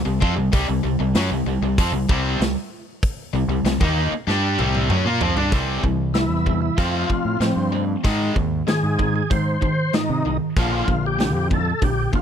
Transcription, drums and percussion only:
0.22 kick loud
0.52 kick loud
0.52 open hi-hat medium
1.15 snare loud
1.15 open hi-hat medium
1.78 kick loud
1.78 open hi-hat medium
2.09 kick loud
2.41 snare loud
2.41 open hi-hat medium
3.03 kick loud
3.03 open hi-hat medium
3.65 snare loud
3.65 open hi-hat medium
3.81 kick loud
4.29 snare medium
4.59 high tom medium
4.75 high tom medium
4.90 mid tom medium
5.21 floor tom medium
5.37 floor tom medium
5.52 kick loud
5.52 open hi-hat soft
5.84 kick medium
6.14 snare medium
6.14 open hi-hat soft
6.46 kick medium
6.78 kick loud
6.78 open hi-hat soft
7.10 kick medium
7.41 snare medium
7.41 open hi-hat soft
8.05 kick loud
8.05 open hi-hat medium
8.36 kick medium
8.68 snare loud
8.68 open hi-hat soft
8.99 kick medium
9.31 kick loud
9.31 open hi-hat soft
9.62 kick medium
9.93 snare medium
9.93 open hi-hat soft
10.56 kick loud
10.56 open hi-hat soft
10.88 kick medium
11.20 snare medium
11.20 open hi-hat soft
11.51 kick medium
11.82 kick medium
11.82 open hi-hat soft
12.13 kick medium

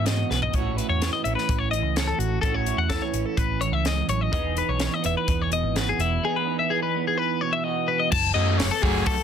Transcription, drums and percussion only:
0.06 snare loud
0.06 closed hi-hat medium
0.31 snare soft
0.42 floor tom medium
0.53 kick medium
0.53 closed hi-hat medium
0.78 closed hi-hat medium
1.02 snare loud
1.02 closed hi-hat medium
1.25 closed hi-hat soft
1.38 snare soft
1.49 kick loud
1.49 closed hi-hat medium
1.73 closed hi-hat medium
1.96 snare loud
1.96 closed hi-hat medium
2.20 closed hi-hat medium
2.43 kick medium
2.43 closed hi-hat medium
2.66 closed hi-hat medium
2.90 kick medium
2.90 snare medium
2.90 closed hi-hat medium
3.14 closed hi-hat medium
3.37 kick loud
3.37 closed hi-hat medium
3.61 closed hi-hat medium
3.85 snare medium
3.85 closed hi-hat medium
4.09 closed hi-hat medium
4.33 kick loud
4.33 closed hi-hat medium
4.57 closed hi-hat medium
4.80 snare loud
4.80 closed hi-hat medium
5.04 closed hi-hat medium
5.28 kick loud
5.28 closed hi-hat medium
5.52 closed hi-hat medium
5.76 snare medium
5.76 closed hi-hat medium
6.00 closed hi-hat medium
8.12 kick loud
8.12 crash loud
8.59 snare loud
8.59 open hi-hat medium
8.83 kick medium
9.06 kick loud
9.06 open hi-hat medium

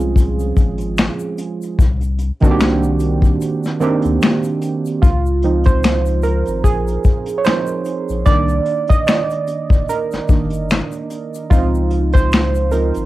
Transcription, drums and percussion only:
0.00 shaker soft
0.16 kick medium
0.16 closed hi-hat medium
0.16 shaker medium
0.39 closed hi-hat soft
0.39 shaker medium
0.57 kick medium
0.57 closed hi-hat medium
0.57 shaker soft
0.78 closed hi-hat medium
0.78 shaker soft
0.97 finger snap medium
0.97 snare loud
0.97 closed hi-hat medium
0.97 shaker medium
1.19 shaker medium
1.38 closed hi-hat medium
1.38 shaker soft
1.62 closed hi-hat soft
1.62 shaker soft
1.79 kick loud
1.79 closed hi-hat medium
1.79 shaker medium
2.01 closed hi-hat soft
2.01 shaker soft
2.18 closed hi-hat medium
2.18 shaker soft
2.40 kick medium
2.40 closed hi-hat soft
2.40 shaker medium
2.60 finger snap loud
2.60 snare loud
2.60 closed hi-hat medium
2.60 shaker medium
2.83 shaker soft
2.99 closed hi-hat medium
2.99 shaker medium
3.22 kick medium
3.22 closed hi-hat soft
3.22 shaker soft
3.41 closed hi-hat medium
3.41 shaker medium
3.63 snare soft
3.63 shaker soft
3.81 closed hi-hat medium
3.81 shaker soft
4.02 closed hi-hat medium
4.02 shaker soft
4.22 finger snap medium
4.22 snare loud
4.22 closed hi-hat medium
4.22 shaker medium
4.44 closed hi-hat soft
4.44 shaker medium
4.62 closed hi-hat medium
4.62 shaker medium
4.86 closed hi-hat soft
4.86 shaker medium
5.03 kick loud
5.03 closed hi-hat medium
5.03 shaker medium
5.26 shaker soft
5.42 closed hi-hat medium
5.64 kick medium
5.64 closed hi-hat soft
5.64 shaker medium
5.83 finger snap medium
5.83 snare loud
5.83 closed hi-hat medium
5.83 shaker medium
6.06 closed hi-hat soft
6.06 shaker soft
6.23 closed hi-hat medium
6.23 shaker soft
6.45 closed hi-hat soft
6.45 shaker soft
6.64 kick medium
6.64 closed hi-hat medium
6.64 shaker medium
6.87 closed hi-hat soft
6.87 shaker soft
7.04 kick medium
7.04 closed hi-hat medium
7.04 shaker soft
7.26 closed hi-hat medium
7.26 shaker soft
7.45 finger snap medium
7.45 snare loud
7.45 closed hi-hat medium
7.45 shaker medium
7.67 shaker medium
7.85 closed hi-hat medium
7.85 shaker soft
8.09 closed hi-hat soft
8.09 shaker medium
8.26 kick loud
8.26 closed hi-hat medium
8.26 shaker medium
8.48 closed hi-hat soft
8.48 shaker soft
8.66 closed hi-hat medium
8.87 kick medium
8.87 closed hi-hat medium
8.87 shaker medium
9.07 finger snap loud
9.07 snare loud
9.07 closed hi-hat medium
9.07 shaker medium
9.30 closed hi-hat soft
9.30 shaker soft
9.47 closed hi-hat medium
9.47 shaker soft
9.69 kick loud
9.69 closed hi-hat soft
9.69 shaker soft
9.89 closed hi-hat medium
9.89 shaker medium
10.11 snare soft
10.11 closed hi-hat soft
10.11 shaker soft
10.28 kick medium
10.28 closed hi-hat medium
10.28 shaker soft
10.50 closed hi-hat medium
10.50 shaker soft
10.70 finger snap loud
10.70 snare loud
10.70 closed hi-hat medium
10.70 shaker medium
10.92 closed hi-hat soft
10.92 shaker medium
11.10 closed hi-hat medium
11.10 shaker soft
11.34 closed hi-hat soft
11.34 shaker medium
11.51 kick loud
11.51 closed hi-hat medium
11.51 shaker medium
11.75 shaker soft
11.91 closed hi-hat medium
12.12 kick medium
12.12 closed hi-hat soft
12.17 shaker medium
12.32 finger snap loud
12.32 snare loud
12.32 closed hi-hat medium
12.32 shaker medium
12.55 closed hi-hat soft
12.55 shaker soft
12.71 closed hi-hat medium
12.71 shaker soft
12.94 closed hi-hat soft
12.94 shaker soft

